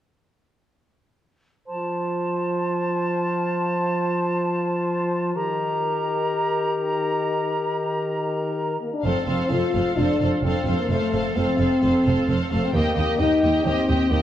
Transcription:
1.68 F3 F4 C5 A5
5.35 D#3 G4 A#4 A#5
8.80 A#3
8.93 D4
9.04 F1 F2 C4 A4 C5 F5
9.28 F1 F2 A4 C5 F5
9.50 F1 F2 F4 A4 C5 F5
9.74 F1 F2 A4 C5 F5
9.96 F1 F2 D4 A4 C5 F5
10.21 F1 F2 A4 C5 F5
10.43 F1 F2 C4 A4 C5 F5
10.66 F1 F2 A4 C5 F5
10.79 A#3
10.89 F1 F2 A3 A4 C5 F5
11.13 F1 F2 A4 C5 F5
11.35 F1 F2 C4 A4 C5 F5
11.58 F1 F2 A4 C5 F5
11.82 F1 F2 A4 C5 F5
12.05 F1 F2 A4 C5 F5
12.29 F1 F2 A4 C5 F5
12.51 F1 F2 A3 A4 C5 F5
12.65 C4
12.74 D#2 A#3 G4 D#5 G5
12.97 D#2 G4 D#5 G5
13.19 D#2 D#4 G4 D#5 G5
13.43 D#2 G4 D#5 G5
13.65 D#2 C4 G4 D#5 G5
13.89 D#2 G4 D#5 G5
14.12 D#2 A#3 G4 D#5 G5

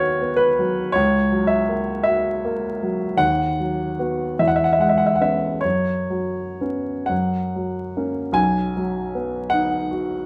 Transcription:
Already playing: D#2 F#3 B3 F#4 A#4 B4 C#5
0.21 B3
0.36 B4
0.59 F#3
0.92 C#2 C#5
1.32 F#3
1.47 E5
1.69 A#3
2.04 F#4 E5
2.45 A#3
2.82 F#3
3.17 D#2 F#5
3.60 F#3
3.99 B3 F#4
4.39 E2 E5
4.47 F#5
4.56 E5
4.64 F#5
4.73 E5
4.79 G#3 F#5
4.89 E5
4.98 F#5
5.06 E5
5.16 F#5
5.20 B3 C#4 E5
5.61 F#2 C#5
6.10 F#3
6.61 B3 C#4
7.06 F#2 F#5
7.56 F#3
7.97 A#3 C#4
8.32 B1 G#5
8.77 F#3
9.15 B3
9.50 D#4 F#5
9.91 F#4

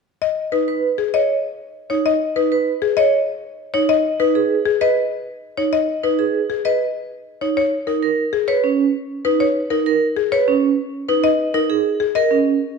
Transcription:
0.22 D#5
0.52 D#4 B4
0.68 B4
0.98 G#4
1.14 C#5 D#5
1.90 D#4 C#5
2.06 D#5
2.36 D#4 B4
2.52 B4
2.82 G#4
2.97 C#5 D#5
3.74 D#4 C#5
3.89 D#5
4.20 D#4 B4
4.35 G#4
4.66 G#4
4.81 B4 D#5
5.57 D#4 C#5
5.73 D#5
6.04 D#4 B4
6.19 G#4
6.50 G#4
6.65 B4 D#5
7.41 D#4 C#5
7.57 C#5
7.87 D#4 A#4
8.03 A#4
8.33 G#4
8.48 B4 C#5
8.64 C#4
9.25 D#4 B4
9.40 C#5
9.70 D#4 A#4
9.86 A#4
10.16 G#4
10.32 B4 C#5
10.48 C#4
11.09 D#4 B4
11.24 D#5
11.54 D#4 A#4
11.70 G#4
12.00 G#4
12.15 A#4 D#5
12.31 C#4

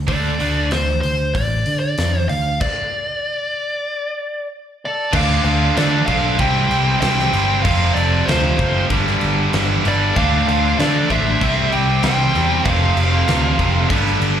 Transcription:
0.08 D2 D3 A3 D4 D5, kick, open hi-hat
0.40 D2 D3 A3 D4, open hi-hat
0.71 D2 C5, snare, open hi-hat
1.01 D2 C5, open hi-hat
1.34 A1 D5, kick, open hi-hat
1.66 D3, open hi-hat
1.80 D5
1.98 F2, snare, open hi-hat
2.29 D2 F5, open hi-hat
2.61 D5, kick, crash
4.85 A4 D5
5.13 D2 D3 A3 D4 F4 F5, kick, crash
5.17 D5
5.45 D2 C5 F5, crash
5.77 D3 A3 D4 A4 D5, snare, crash
6.06 B1 D3 A3 D4 C5 F5, kick, crash
6.38 C2 C3 E3 G3 C4 G5, kick, crash
6.42 E4 C5
6.69 C2, crash
7.01 C2 C3 G3 C4 C5 G5, snare, crash
7.18 snare
7.33 G1 C3 G3 C4, crash
7.62 F1 F2 C3 F3 A3 C4 C5 F5, kick, crash
7.68 F4
7.94 F1 A4 D5, crash
8.25 D2 F2 C3 F3 F4 C5, snare, crash
8.57 F#1 F2 C3 F3, kick, crash
8.90 G1 G2 D3 G3 B3 D4, kick, crash
9.07 snare
9.21 G1, crash
9.53 G1 G2 D3 G3, snare, crash
9.83 G1 G2 D3 G3, crash
9.88 A4 D5
10.15 D2 D3 F3 A3 D4 D5 F5, kick, crash
10.48 D2 C5 F5, crash
10.78 D3 A3 D4 A4 D5, snare, crash
11.10 A1 D3 A3 D4 C5 E5, kick, crash
11.41 C2 C3 G3 C4 E4, kick, crash
11.72 C2 D5 G5, crash
12.03 C2 C3 G3 C4 C5 G5, snare, crash
12.33 E2 C3 G3 C4, crash
12.64 F1 F2 C3 F3 A3 C4 C5 F5, kick, crash
12.97 F1, crash
13.27 D2 F2 C3 F3, snare, crash
13.58 F1 F2 C3 F3, kick, crash
13.89 G1 G2 D3 G3 B3 D4, kick, crash
14.06 snare
14.20 G1, crash

